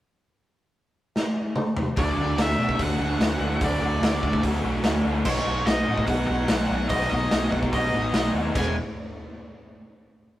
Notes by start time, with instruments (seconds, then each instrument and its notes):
1.16 snare
1.56 mid tom
1.77 floor tom
1.96 picked electric bass D2, overdriven electric guitar D3 F#3 A3 D4 F#4, lead electric guitar D5, kick, open hi-hat
2.17 picked electric bass D2, overdriven electric guitar D3 F#3 A3 D4 F#4
2.37 picked electric bass D2, overdriven electric guitar D3 F#3 A3 D4 F#4, lead electric guitar E5, snare, open hi-hat
2.58 picked electric bass B2, overdriven electric guitar D3 F#3 A3 D4 F#4
2.69 kick
2.78 picked electric bass D2, overdriven electric guitar D3 F#3 A3 D4 F#4, kick, open hi-hat
2.83 lead electric guitar F#5
2.99 picked electric bass D2, overdriven electric guitar D3 F#3 A3 D4 F#4
3.20 picked electric bass D2, overdriven electric guitar D3 F#3 A3 D4 F#4, snare, open hi-hat
3.40 picked electric bass D2, overdriven electric guitar D3 F#3 A3 D4
3.44 overdriven electric guitar F#4
3.60 picked electric bass D2, overdriven electric guitar D3 F#3 A3 D4 F#4, lead electric guitar D5, kick, open hi-hat
3.81 picked electric bass D2, overdriven electric guitar D3 F#3 A3 D4 F#4
4.01 picked electric bass D2, overdriven electric guitar D3 F#3 A3 D4 F#4, lead electric guitar D5, snare, open hi-hat
4.23 picked electric bass D2, overdriven electric guitar D3 F#3 A3 D4 F#4, kick
4.33 kick
4.43 picked electric bass D2, overdriven electric guitar D3 F#3 A3 D4 F#4, kick, open hi-hat
4.63 picked electric bass B1, overdriven electric guitar D3 F#3 A3 D4 F#4
4.84 picked electric bass D2, overdriven electric guitar D3 F#3 A3 D4 F#4, snare, open hi-hat
5.03 picked electric bass D2, overdriven electric guitar D3 F#3 A3 D4 F#4
5.24 picked electric bass B1, overdriven electric guitar B2 F#3 B3 D#4 F#4, lead electric guitar C#5, kick, crash
5.37 snare
5.45 picked electric bass B1, overdriven electric guitar B2 F#3 B3 D#4 F#4
5.66 picked electric bass B1, overdriven electric guitar B2 F#3 B3 D#4 F#4, lead electric guitar D#5, snare, open hi-hat
5.87 picked electric bass A2, overdriven electric guitar B2 F#3 B3 D#4 F#4
5.98 kick
6.07 picked electric bass B1, overdriven electric guitar B2 F#3 B3 D#4, lead electric guitar F#5, kick, open hi-hat
6.11 overdriven electric guitar F#4
6.27 picked electric bass B1, overdriven electric guitar B2 F#3 B3, lead electric guitar F#5
6.31 overdriven electric guitar D#4 F#4
6.48 picked electric bass B1, overdriven electric guitar B2 F#3 B3 D#4, snare, open hi-hat
6.53 overdriven electric guitar F#4
6.67 picked electric bass B1, overdriven electric guitar B2, lead electric guitar F#5
6.72 overdriven electric guitar F#3 B3 D#4 F#4
6.89 picked electric bass B1, overdriven electric guitar B2 F#3 B3 D#4, lead electric guitar D#5, kick, open hi-hat
6.93 overdriven electric guitar F#4
7.01 snare
7.10 picked electric bass B1, overdriven electric guitar B2 F#3 B3 D#4, lead electric guitar D#5
7.14 overdriven electric guitar F#4
7.31 picked electric bass B1, overdriven electric guitar B2 F#3 B3 D#4, snare, open hi-hat
7.36 overdriven electric guitar F#4
7.42 snare
7.52 picked electric bass B1, overdriven electric guitar B2 F#3 B3 D#4, lead electric guitar F#5, kick
7.56 overdriven electric guitar F#4
7.63 kick
7.73 picked electric bass B1, overdriven electric guitar B2 F#3 B3 D#4, lead electric guitar D#5, kick, open hi-hat
7.77 overdriven electric guitar F#4
7.93 picked electric bass A1, overdriven electric guitar B2 F#3 B3 D#4 F#4
8.14 picked electric bass B1, overdriven electric guitar B2 F#3 B3 D#4, snare, open hi-hat
8.18 overdriven electric guitar F#4
8.34 picked electric bass D#2, overdriven electric guitar B2 F#3 B3 D#4 F#4
8.55 picked electric bass E1, overdriven electric guitar E2 B2 E3 G#3 B3 E4, lead electric guitar G#5, kick, crash